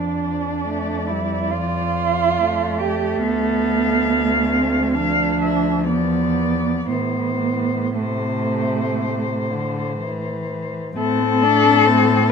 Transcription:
0.00 3.23 F2 soft
0.00 0.68 F3 soft
0.00 1.08 D4 medium
0.00 3.19 D5 soft
0.68 1.12 A3 medium
1.07 1.55 G3 medium
1.07 1.51 E4 medium
1.50 2.39 F3 medium
1.50 2.80 F4 medium
2.38 4.95 A3 medium
2.79 3.21 G4 medium
3.22 5.89 D2 medium
3.22 4.53 B3 medium
3.22 4.91 F5 medium
4.52 4.96 C4 medium
4.94 6.86 F3 medium
4.94 5.87 D4 medium
4.94 5.39 F5 medium
5.41 5.88 E5 medium
5.88 6.91 E2 medium
5.88 6.85 B3 medium
5.88 6.87 D5 medium
6.86 10.75 A2 medium
6.86 7.84 E3 soft
6.86 7.96 B3 medium
6.91 7.95 C5 medium
7.95 9.52 C3 medium
7.95 9.98 A3 medium
7.95 10.72 C5 medium
9.50 9.99 D3 medium
10.00 10.95 E3 medium
10.95 12.32 A2 medium
10.95 11.20 A3 medium
10.95 11.45 C4 medium
10.95 12.31 A4 loud
11.19 11.43 C4 medium
11.41 11.64 A3 medium
11.41 11.88 D4 medium
11.63 11.85 C4 medium
11.86 12.07 A3 medium
11.86 12.29 C4 medium
12.06 12.31 C4 medium

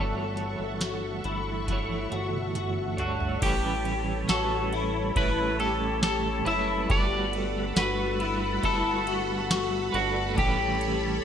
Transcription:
0.00 0.56 G1 medium
0.00 1.66 E3 medium
0.00 1.72 G3 medium
0.00 1.68 A3 medium
0.00 1.69 F#4 medium
0.00 0.81 A4 medium
0.00 3.38 A4 medium
0.00 1.72 C#5 medium
0.00 3.38 E5 medium
0.00 3.38 F#5 medium
0.00 3.38 C#6 medium
0.37 closed hi-hat soft
0.60 1.21 G1 medium
0.81 1.24 F#4 medium
0.81 snare loud
0.81 closed hi-hat medium
1.24 2.08 G1 medium
1.24 1.67 E4 medium
1.24 closed hi-hat soft
1.67 3.04 E3 medium
1.67 3.03 A3 medium
1.67 2.11 E4 medium
1.67 kick medium
1.67 closed hi-hat medium
1.67 high tom soft
1.71 2.99 F#4 medium
1.71 2.97 C#5 medium
1.90 high tom soft
2.11 3.38 G1 medium
2.11 2.54 F#4 medium
2.11 closed hi-hat soft
2.33 mid tom medium
2.55 2.98 F#4 medium
2.55 closed hi-hat medium
2.55 mid tom medium
2.97 3.42 D4 medium
2.97 3.42 F#4 medium
2.97 3.43 F#4 soft
2.97 3.41 C#5 medium
2.97 closed hi-hat soft
2.97 floor tom medium
3.03 3.43 A3 soft
3.20 floor tom medium
3.41 4.25 A1 loud
3.41 4.28 A2 medium
3.41 4.29 E3 medium
3.41 4.27 G3 medium
3.41 4.30 A3 medium
3.41 4.30 C#4 medium
3.41 4.29 G4 medium
3.41 4.29 G4 loud
3.41 11.24 A4 medium
3.41 6.86 C#5 medium
3.41 11.24 A5 medium
3.41 11.24 B5 medium
3.41 kick loud
3.41 crash medium
3.41 ride medium
3.45 4.33 B4 medium
3.85 ride soft
4.28 5.12 A1 loud
4.28 5.17 G3 medium
4.28 5.18 A3 medium
4.28 4.72 F#4 medium
4.28 5.16 A4 medium
4.28 snare loud
4.28 ride medium
4.28 tambourine medium
4.32 5.17 C#4 medium
4.32 5.19 B4 medium
4.73 5.15 E4 medium
4.73 ride soft
5.15 6.42 A1 loud
5.15 6.46 A2 medium
5.15 6.47 E3 medium
5.15 6.51 G3 medium
5.15 6.48 A3 medium
5.15 6.46 C#4 medium
5.15 5.59 E4 medium
5.15 5.57 B4 loud
5.15 kick medium
5.15 ride medium
5.19 6.45 B4 medium
5.59 6.02 G4 medium
5.59 6.02 A4 medium
5.59 ride soft
6.03 6.46 G4 medium
6.03 6.47 A4 loud
6.03 snare loud
6.03 ride medium
6.03 tambourine medium
6.45 6.88 F#1 loud
6.45 6.91 C#4 medium
6.45 6.89 E4 medium
6.45 6.89 B4 medium
6.45 6.91 E5 loud
6.45 ride soft
6.49 6.88 G3 soft
6.49 6.89 A3 soft
6.89 7.73 G1 loud
6.89 7.75 G3 medium
6.89 7.77 A3 medium
6.89 7.78 F#4 medium
6.89 7.76 G4 medium
6.89 7.77 D5 loud
6.89 10.34 F#5 medium
6.89 kick loud
6.89 ride medium
6.93 7.81 B4 medium
7.33 ride soft
7.75 8.60 G1 loud
7.75 8.62 G3 medium
7.75 8.64 A3 medium
7.75 8.20 F#4 medium
7.75 8.65 B4 medium
7.75 snare loud
7.75 ride medium
7.75 tambourine medium
7.79 8.65 F#4 medium
7.79 8.66 B4 medium
8.20 8.62 E4 medium
8.20 ride soft
8.63 9.90 G1 loud
8.63 9.99 G3 medium
8.63 9.95 A3 medium
8.63 9.07 E4 medium
8.63 9.95 F#4 medium
8.63 9.99 A4 loud
8.63 kick medium
8.63 ride medium
8.67 9.92 B4 medium
9.07 9.50 F#4 medium
9.07 ride soft
9.51 9.94 F#4 loud
9.51 snare loud
9.51 ride medium
9.51 tambourine medium
9.92 10.35 G1 loud
9.92 10.38 D4 medium
9.92 10.38 F#4 medium
9.92 10.39 F#4 soft
9.92 10.37 B4 medium
9.92 ride soft
9.98 10.39 A3 soft
10.35 11.21 A1 loud
10.35 11.24 A2 medium
10.35 11.24 E3 medium
10.35 11.24 G4 medium
10.35 11.24 C#5 medium
10.35 kick loud
10.35 ride medium
10.39 11.24 G3 medium
10.39 11.24 A3 medium
10.39 11.24 C#4 loud
10.39 11.24 G4 loud
10.44 11.24 B4 medium
10.81 ride soft

